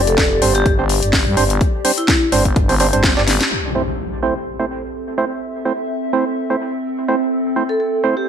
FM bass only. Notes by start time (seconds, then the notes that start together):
Already playing: F1
0.42 G1
0.66 G1
1.03 G1
1.26 G2
1.37 G1
2.32 G1
2.56 G1
2.93 G1
3.17 G1